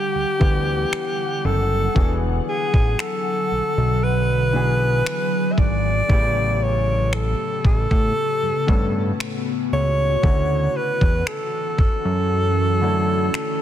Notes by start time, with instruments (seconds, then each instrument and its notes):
Already playing: ambient pad D3 G3 F#5, alto saxophone G4
0.15 analog synth bass D2
0.40 analog synth bass D2, grand piano E3 B3 D4 G4 F#5, kick
0.93 finger snap
1.45 analog synth bass F#1, alto saxophone A4
1.95 analog synth bass E1, ambient pad D3 F#3, grand piano E3 B3 D4 F#4 G#4, kick
2.49 alto saxophone G#4
2.74 analog synth bass A1, kick
2.99 alto saxophone A4, finger snap
3.52 analog synth bass B1
3.77 analog synth bass B1
4.03 ambient pad G#4, alto saxophone B4
4.53 grand piano E3 B3 D4 F#4 G#4
5.06 finger snap
5.52 alto saxophone E5
5.58 analog synth bass G#1, alto saxophone D5, kick
6.08 analog synth bass A1, grand piano A2 C#3 A3 B3 G4, ambient pad C#3 B3 G4, kick
6.63 alto saxophone C#5
7.13 alto saxophone A4, finger snap
7.65 analog synth bass A1, alto saxophone A4, kick
7.91 analog synth bass A2, kick
8.16 ambient pad F#4
8.43 analog synth bass G2
8.67 analog synth bass G2, grand piano A2 A3 B3 C#4 A4, kick
9.20 finger snap
9.72 analog synth bass C#2, alto saxophone C#5
10.22 analog synth bass D2, grand piano D3 A3 C#4 E4 F#4, ambient pad E3 C#4 F#4, kick
10.77 alto saxophone B4
11.01 analog synth bass E2, kick
11.27 alto saxophone A4, finger snap
11.78 analog synth bass F#2, alto saxophone A4, kick
12.05 analog synth bass F#2
12.81 grand piano D3 A3 C#4 E4 A4
13.34 finger snap